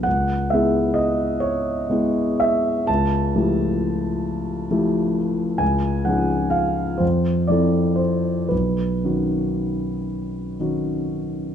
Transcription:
\new Staff \with { instrumentName = "Grand piano" } { \time 6/8 \key cis \mixolydian \tempo 4. = 42 << { fis''8 e''8 dis''8 cis''4 e''8 | a''2~ a''8 r8 | gis''8 fis''8 eis''8 c''8 d''8 c''8 | b'4. r4. | } \\ { cis,8 <gis b e' gis'>4. <gis b e' gis'>4 | cis,8 <f a e' g'>4. <f a e' g'>4 | cis,8 <eis cis' dis' gis'>4 f,8 <f c' e' a'>4 | b,,8 <dis cis' dis' fis'>4. <dis cis' dis' fis'>4 | } >> }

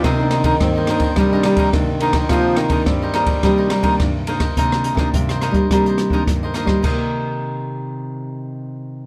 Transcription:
<<
  \new Staff \with { instrumentName = "Cavaquinho" } { \time 4/4 \key c \minor \tempo 4 = 106 <ees' bes' c'' ees''>8 <ees' bes' c'' ees''>16 <ees' bes' c'' ees''>16 r16 <bes' c'' ees''>16 <ees' bes' c'' ees''>16 <bes' c'' ees''>16 <ees' bes' c'' ees''>16 <bes' c'' ees''>16 <ees' bes' c'' ees''>16 <ees' bes' c'' ees''>16 r8 <ees' bes' c'' ees''>16 <bes' c'' ees''>16 | <ees' bes' c'' ees''>8 <ees' bes' c'' ees''>16 <ees' bes' c'' ees''>16 r16 <bes' c'' ees''>16 <ees' bes' c'' ees''>16 <bes' c'' ees''>16 <ees' bes' c'' ees''>16 <bes' c'' ees''>16 <ees' bes' c'' ees''>16 <ees' bes' c'' ees''>16 r8 <ees' bes' c'' ees''>16 <bes' c'' ees''>16 | <ees' bes' c'' ees''>8 <ees' bes' c'' ees''>16 <ees' bes' c'' ees''>16 r16 <bes' c'' ees''>16 <ees' bes' c'' ees''>16 <bes' c'' ees''>16 <ees' bes' c'' ees''>16 <bes' c'' ees''>8 <ees' bes' c'' ees''>16 r16 <bes' c'' ees''>16 <ees' bes' c'' ees''>16 <bes' c'' ees''>16 | <ees' bes' c'' ees''>1 | }
  \new Staff \with { instrumentName = "Nylon-string guitar" } { \time 4/4 \key c \minor << { <ees bes d'>16 <ees bes d'>8. <ees bes d'>8 <ees bes d'>8. <ees bes d'>8. <ees bes d'>16 r16 <ees bes d'>8 | <ees bes d'>8. <ees bes d'>8. <ees bes d'>8 <ees bes d'>8 r16 <ees bes d'>8. <ees bes d'>16 r16 | <ees bes d'>8. <ees bes d'>8. <ees bes d'>16 r16 <ees bes d'>8. <ees bes d'>8. <ees bes d'>8 | <c ees bes>1 | } \\ { c4 g,4 c4 g,4 | c4 g,4 c4 g,4 | c4 g,4 c4 g,4 | r1 | } >> }
  \new Staff \with { instrumentName = "Tenor saxophone" } { \clef bass \time 4/4 \key c \minor ees2 g4 ees4 | f8 ees8 g2~ g8 r8 | r1 | r1 | }
  \new Staff \with { instrumentName = "Nylon-string guitar" } { \clef bass \time 4/4 \key c \minor c4 c'4 g8 g8 c4 | c4 c'4 g8 g8 c4 | c8. c16 c8. g16 g4 c8 r16 g16 | c1 | }
  \new DrumStaff \with { instrumentName = "Drums" } \drummode { \time 4/4 <bd cymr ss>8 <cymr ss>16 <bd cymr>16 <bd cymr ss>8 <cymr ss>16 <bd cymr>16 <bd cymr ss>8 <cymr ss>16 <bd cymr>16 <bd cymr ss>8 cymr16 <bd cymr ss>16 | <bd cymr ss>8 <cymr ss>16 <bd cymr>16 <bd cymr ss>8 <cymr ss>16 <bd cymr>16 <bd cymr ss>8 <cymr ss>16 <bd cymr>16 <bd cymr ss>8 cymr16 <bd cymr ss>16 | <hh bd>16 <hh ss>16 hh16 <bd ss>16 <hh bd>16 <hh ss>16 <hh ss>16 <hh bd>16 <hh bd ss>16 hh16 <hh ss>16 bd16 <hh bd ss>8 <hh ss>16 <bd ss>16 | <cymc bd>4 r4 r4 r4 | }
>>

